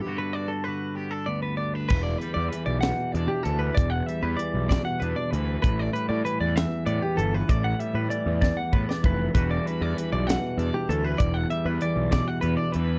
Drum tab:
CC |------------|x-----------|------------|------------|
HH |------------|--x-x-x-x-x-|x-x-x-x-x-x-|x-x-x-x-x-x-|
SD |------------|------o-----|------o-----|------o-----|
BD |------------|o-----------|o-----o-----|o-----------|

CC |------------|------------|------------|
HH |x-x-x-------|x-x-x-x-x-x-|x-x-x-x-x-x-|
SD |------o--o--|------o-----|------o-----|
BD |o-----o-o-o-|o-----------|o-----o-----|